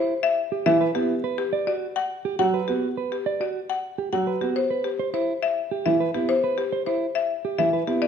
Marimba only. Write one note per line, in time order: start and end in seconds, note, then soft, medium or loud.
0.00 0.13 C5 medium
0.23 0.42 E5 medium
0.66 0.85 E5 medium
0.95 1.14 G4 medium
1.38 1.57 G4 medium
1.67 1.86 D5 medium
1.96 2.15 F#5 medium
2.39 2.58 F#5 medium
2.68 2.87 G4 soft
3.12 3.31 G4 soft
3.41 3.59 D5 soft
3.70 3.88 F#5 medium
4.13 4.31 F#5 medium
4.41 4.60 G4 soft
4.56 4.75 C5 medium
4.84 5.03 G4 medium
5.14 5.32 C5 soft
5.43 5.61 E5 medium
5.86 6.04 E5 medium
6.14 6.33 G4 soft
6.29 6.48 C5 medium
6.58 6.77 G4 medium
6.86 7.05 C5 soft
7.15 7.34 E5 medium
7.59 7.77 E5 medium
7.87 8.06 G4 medium
8.02 8.08 D5 medium